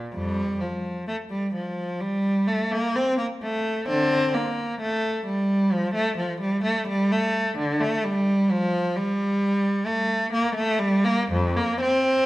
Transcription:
Already playing: A#2
0.15 F2 G3
0.60 F3
1.07 A3
1.30 G3
1.54 F3
2.01 G3
2.47 A3
2.72 A#3
2.95 C4
3.17 A#3
3.42 A3
3.88 D3 C4
4.34 A#3
4.80 A3
5.26 G3
5.72 F3
5.94 A3
6.17 F3
6.41 G3
6.64 A3
6.88 G3
7.12 A3
7.57 D3
7.81 A3
8.04 G3
8.51 F3
8.96 G3
9.86 A3
10.33 A#3
10.55 A3
10.79 G3
11.04 A#3
11.31 F2
11.57 A#3
11.81 C4

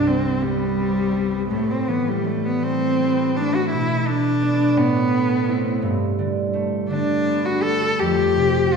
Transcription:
Already playing: C2 G2 B3 C4
0.07 G3 C4
0.43 G3 B3
0.79 C4
1.14 B3
1.50 A2 A3
1.70 C4
1.88 E3 B3
2.08 G3
2.24 G3 A3
2.46 B3
2.62 A3 C4
3.01 B3
3.37 A3 D4
3.55 F#4
3.71 B2 E4
4.07 A3 D4
4.42 B3 D4
4.77 A2 B3
5.13 A3
5.48 C4 E4
5.82 G2
6.19 D3
6.53 A3
6.90 D3 D4
7.27 B3
7.45 F#4
7.63 A3 A4
8.00 F2 G4
8.37 C3
8.73 F4

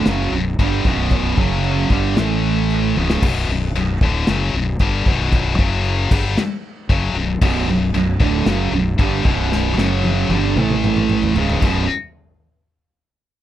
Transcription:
0.06 F#1 F#2 C#3 F#3, snare, china
0.32 B0 B1 F#2
0.59 G1 G2 D3 G3, kick, china
0.84 B0 B1 F#2 B2, kick
1.10 kick, china
1.37 F#1 F#2 C#3 F#3, kick
1.64 china
1.90 G1 G2 D3 G3, kick
2.17 A1 A2 E3 A3, snare, china
2.70 china
2.96 C#1 C#2 G#2 C#3, high tom
3.10 snare
3.22 B0 B1 F#2 B2, kick, crash, china
3.49 B0 B1 F#2
3.75 B0 B1 F#2, china
4.01 D1 D2 A2 D3, kick
4.27 F#1 F#2 C#3 F#3, snare, china
4.54 B0 B1 F#2
4.79 G1 G2 D3 G3, kick, china
5.06 B0 B1 F#2 B2, kick
5.32 kick, china
5.58 F#1 F#2 C#3 F#3, kick
5.85 china
6.11 G1 G2 D3 G3, kick, crash
6.38 snare, china
6.89 F#1 F#2 C#3 F#3, kick, china
7.13 B0 B1 F#2
7.41 B0 B1 F#2 B2, kick, crash, china
7.68 B0 B1 F#2
7.94 B0 B1 F#2, china
8.20 D1 D2 A2 D3, kick
8.45 F#1 F#2 C#3 F#3, snare, china
8.72 B0 B1 F#2
8.98 G1 G2 D3 G3, kick, china
9.24 B0 B1 F#2 B2, kick
9.52 snare
9.77 F#1 F#2 C#3 F#3, snare
10.04 high tom
10.29 G1 G2 D3 G3, high tom
10.56 A1 A2 E3 A3, mid tom
10.70 mid tom
10.84 mid tom
10.97 mid tom
11.10 mid tom
11.23 floor tom
11.34 C#1 C#2 G#2, floor tom
11.38 C#3
11.50 floor tom
11.61 B0 B1 F#2 B2, kick, crash

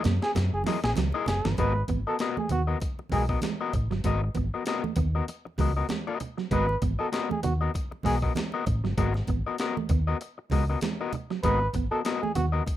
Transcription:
0.04 F#2 A#3, muted clean electric guitar stroke, snare, closed hi-hat, low conga
0.22 G#4, muted clean electric guitar stroke, snare
0.35 F#2, muted clean electric guitar stroke, snare, closed hi-hat, low conga
0.53 F#1 G#4
0.64 F#3 E4 G#4 A#4 D#5, snare, open hi-hat, high conga
0.84 A#1 G#4, muted clean electric guitar stroke, snare
0.96 C#2 F#3, muted clean electric guitar stroke, snare, closed hi-hat, muted conga, high conga
1.12 E4 G#4 A#4 D#5, muted conga
1.26 F#1 G#4, muted clean electric guitar stroke, snare, closed hi-hat, low conga
1.45 G1 E3, muted clean electric guitar stroke, snare
1.57 G#1 G#3 B3 F#4 A#4 B4 D#5, kick, closed hi-hat, muted conga
1.75 muted clean electric guitar stroke
1.88 G#1 B3, muted clean electric guitar stroke, kick, closed hi-hat, high conga
2.07 B3 F#4 A4 A#4 D#5
2.19 B3 F#4 A#4 D#5, muted clean electric guitar stroke, snare, closed hi-hat, muted conga
2.37 A3 G#4, muted fingered electric bass stroke, high conga
2.49 D#2 B3 F#4, muted clean electric guitar stroke, closed hi-hat, low conga
2.67 B3 F#4 A#4 D#5
2.80 muted clean electric guitar stroke, kick, closed hi-hat, muted conga
2.99 muted clean electric guitar stroke, muted conga
3.09 B1 G#3 B3 F#4 G#4 A#4 D#5, kick, open hi-hat, high conga
3.29 B3 F#4 A#4 D#5, kick
3.42 G#3, muted clean electric guitar stroke, snare, closed hi-hat, muted conga, high conga
3.61 B3 F#4 A#4 D#5
3.73 A1, muted clean electric guitar stroke, kick, closed hi-hat, low conga
3.90 G1 F#3, muted clean electric guitar stroke, snare
4.04 G#1 G#3 B3 F#4 A#4 D#5, kick, closed hi-hat, muted conga
4.24 muted clean electric guitar stroke
4.34 G#1 B3, muted clean electric guitar stroke, kick, closed hi-hat, high conga
4.54 B3 F#4 A#4 D#5
4.65 B3 F#4 A#4 D#5, muted clean electric guitar stroke, snare, closed hi-hat
4.83 A3, muted fingered electric bass stroke, muted conga, high conga
4.96 D#2 B3, muted clean electric guitar stroke, kick, closed hi-hat, low conga
5.15 B3 F#4 A#4 D#5
5.28 muted clean electric guitar stroke, closed hi-hat, muted conga
5.45 muted clean electric guitar stroke, muted conga
5.58 C#2 G#3 B3 F#4 A#4 D#5, kick, open hi-hat, high conga
5.77 B3 F#4 A#4 D#5
5.89 G#3, muted clean electric guitar stroke, snare, closed hi-hat, muted conga, high conga
6.07 B3 F#4 A#4 D#5, muted conga
6.20 muted clean electric guitar stroke, closed hi-hat, low conga
6.37 F#3, muted clean electric guitar stroke, snare
6.51 G#1 G#3 B3 F#4 A#4 B4 D#5, kick, closed hi-hat, muted conga
6.69 muted clean electric guitar stroke, muted conga
6.82 G#1 B3, muted clean electric guitar stroke, kick, closed hi-hat, high conga
6.99 B3 F#4 A4 A#4 D#5
7.12 B3 F#4 A#4 D#5, muted clean electric guitar stroke, snare, closed hi-hat, muted conga
7.29 A3 G#4, muted fingered electric bass stroke, muted conga, high conga
7.43 D#2 B3 F#4, muted clean electric guitar stroke, closed hi-hat, low conga
7.61 B3 F#4 A#4 D#5
7.74 muted clean electric guitar stroke, kick, closed hi-hat, muted conga
7.91 muted clean electric guitar stroke, muted conga
8.03 B1 G#3 B3 F#4 G#4 A#4 D#5, kick, open hi-hat, high conga
8.22 B3 F#4 A#4 D#5, kick
8.35 G#3, muted clean electric guitar stroke, snare, closed hi-hat, muted conga, high conga
8.52 B3 F#4 A#4 D#5, muted conga
8.66 A1, muted clean electric guitar stroke, kick, closed hi-hat, low conga
8.84 G1 F#3, muted clean electric guitar stroke, snare
8.97 G#1 G#3 B3 F#4 A#4 D#5, kick, closed hi-hat, muted conga
9.14 muted clean electric guitar stroke, snare, muted conga
9.27 G#1 B3, muted clean electric guitar stroke, kick, closed hi-hat, high conga
9.46 B3 F#4 A#4 D#5
9.58 B3 F#4 A#4 D#5, muted clean electric guitar stroke, snare, closed hi-hat
9.77 A3, muted fingered electric bass stroke, muted conga, high conga
9.89 D#2 B3, muted clean electric guitar stroke, kick, closed hi-hat, low conga
10.07 B3 F#4 A#4 D#5
10.21 muted clean electric guitar stroke, closed hi-hat
10.38 muted clean electric guitar stroke
10.50 C#2 G#3 B3 F#4 A#4 D#5, kick, open hi-hat, high conga
10.69 B3 F#4 A#4 D#5
10.81 G#3, muted clean electric guitar stroke, snare, closed hi-hat, muted conga, high conga
11.01 B3 F#4 A#4 D#5
11.13 muted clean electric guitar stroke, closed hi-hat, low conga
11.30 F#3, muted clean electric guitar stroke, snare
11.43 G#1 G#3 B3 F#4 A#4 B4 D#5, kick, closed hi-hat, muted conga
11.62 muted clean electric guitar stroke
11.73 G#1 B3, muted clean electric guitar stroke, kick, closed hi-hat, high conga
11.91 B3 F#4 A4 A#4 D#5
12.05 B3 F#4 A#4 D#5, muted clean electric guitar stroke, snare, closed hi-hat, muted conga
12.22 A3 G#4, muted fingered electric bass stroke, high conga
12.35 D#2 B3 F#4, muted clean electric guitar stroke, closed hi-hat, low conga
12.52 B3 F#4 A#4 D#5
12.66 muted clean electric guitar stroke, kick, closed hi-hat, muted conga

